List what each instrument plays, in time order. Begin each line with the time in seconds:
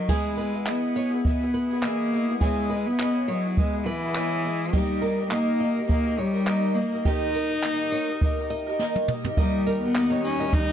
Already playing: cello F#3
0.09 twelve-string acoustic guitar E3 G#3 B3 E4 G#4, cello G#3, nylon-string guitar G#4, kick, crash, tambourine
0.37 twelve-string acoustic guitar G#3 B3 E4 G#4, nylon-string guitar B4, tambourine
0.53 twelve-string acoustic guitar B3 E4 G#4
0.66 twelve-string acoustic guitar E3 G#3 B3 E4 G#4, cello B3, clap, tambourine
0.94 twelve-string acoustic guitar G#3 B3 E4 G#4, nylon-string guitar C#5, tambourine
1.11 twelve-string acoustic guitar B3 E4 G#4, tambourine
1.24 twelve-string acoustic guitar G#3 B3 E4 G#4, cello B3, kick, tambourine
1.40 twelve-string acoustic guitar B3 E4 G#4, tambourine
1.54 nylon-string guitar B4, tambourine
1.70 twelve-string acoustic guitar B3 E4 G#4, tambourine
1.83 twelve-string acoustic guitar E3 G#3 B3 E4 G#4, cello A#3, clap, tambourine
2.12 twelve-string acoustic guitar G#3 B3 E4 G#4, tambourine
2.28 twelve-string acoustic guitar B3 E4 G#4, tambourine
2.40 twelve-string acoustic guitar C#3 G#3 B3 E4 G#4, cello G#3, nylon-string guitar G#4, kick, tambourine
2.70 twelve-string acoustic guitar G#3 B3 E4 G#4, nylon-string guitar B4, tambourine
2.86 cello B3, twelve-string acoustic guitar B3 E4 G#4
3.00 twelve-string acoustic guitar C#3 G#3 B3 E4 G#4, clap, tambourine
3.28 cello F#3, twelve-string acoustic guitar G#3 B3 E4 G#4, nylon-string guitar C#5, tambourine
3.45 twelve-string acoustic guitar B3 E4 G#4
3.57 twelve-string acoustic guitar G#3 B3 E4 G#4, cello G#3, kick, tambourine
3.73 twelve-string acoustic guitar B3 E4 G#4
3.86 cello E3, nylon-string guitar B4, tambourine
4.03 twelve-string acoustic guitar B3 E4 G#4
4.15 twelve-string acoustic guitar C#3 G#3 B3 E4 G#4, clap, tambourine
4.43 twelve-string acoustic guitar G#3 B3 E4 G#4, tambourine
4.73 twelve-string acoustic guitar D#3 A#3 D#4 G4 A#4, cello G3, nylon-string guitar G4, kick, tambourine
5.02 twelve-string acoustic guitar A#3 D#4 G4 A#4, nylon-string guitar A#4, tambourine
5.18 twelve-string acoustic guitar D#4 G4 A#4
5.31 twelve-string acoustic guitar D#3 A#3 D#4 G4 A#4, cello A#3, clap, tambourine
5.60 twelve-string acoustic guitar A#3 D#4 G4 A#4, nylon-string guitar D#5, tambourine
5.76 twelve-string acoustic guitar D#4 G4 A#4
5.88 twelve-string acoustic guitar A#3 D#4 G4 A#4, cello A#3, kick, tambourine
6.04 twelve-string acoustic guitar D#4 G4 A#4, tambourine
6.18 cello G3, nylon-string guitar C#5, tambourine
6.33 twelve-string acoustic guitar D#4 G4 A#4
6.47 twelve-string acoustic guitar D#3 A#3 D#4 G4 A#4, clap, tambourine
6.75 cello A#3, twelve-string acoustic guitar A#3 D#4 G4, tambourine
6.79 twelve-string acoustic guitar A#4
6.92 twelve-string acoustic guitar D#4 G4 A#4, tambourine
7.05 twelve-string acoustic guitar D#3 A#3 D#4 G4 A#4, cello D#4, nylon-string guitar G4, kick, tambourine
7.34 twelve-string acoustic guitar A#3 D#4 G4 A#4, nylon-string guitar A#4, tambourine
7.50 twelve-string acoustic guitar D#4 G4 A#4
7.63 twelve-string acoustic guitar D#3 A#3 D#4 G4 A#4, clap, tambourine
7.92 twelve-string acoustic guitar A#3 D#4 G4 A#4, nylon-string guitar C#5, tambourine
8.09 twelve-string acoustic guitar D#4 G4 A#4, tambourine
8.21 twelve-string acoustic guitar A#3 D#4 G4 A#4, kick, tambourine
8.37 twelve-string acoustic guitar D#4 G4 A#4, tambourine
8.50 nylon-string guitar D#5, tambourine
8.66 twelve-string acoustic guitar D#4 G4 A#4, tambourine
8.79 twelve-string acoustic guitar D#3 A#3 D#4 G4 A#4, snare, tambourine
8.95 high tom
9.08 twelve-string acoustic guitar A#3 D#4 G4 A#4, mid tom, tambourine
9.24 twelve-string acoustic guitar D#4 G4 A#4, floor tom
9.37 string section D#2 G3 D#4, twelve-string acoustic guitar D#3 A#3 D#4 G4 A#4, cello G3, nylon-string guitar D#5, kick, tambourine
9.66 nylon-string guitar A#4, tambourine
9.82 cello B3, twelve-string acoustic guitar D#4 G4 A#4
9.95 twelve-string acoustic guitar D#3 A#3 D#4 G4 A#4, clap, tambourine
10.10 nylon-string guitar C#5
10.24 cello C#4, tambourine
10.40 twelve-string acoustic guitar D#4 G4 A#4, nylon-string guitar D#5
10.53 cello D#4, kick, tambourine
10.69 twelve-string acoustic guitar A#4